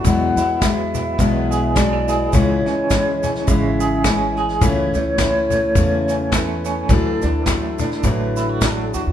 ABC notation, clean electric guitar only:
X:1
M:4/4
L:1/16
Q:"Swing" 1/4=105
K:Emix
V:1 name="Clean electric guitar"
F,2 E2 B,2 E2 B,2 G2 D E G2 | E,2 C2 G,2 C2 G,2 G2 C2 G2 | E,2 A,2 E,2 A,2 E,2 C2 A,2 C2 | E,2 D2 A,2 D2 A,2 E F D2 F2 |]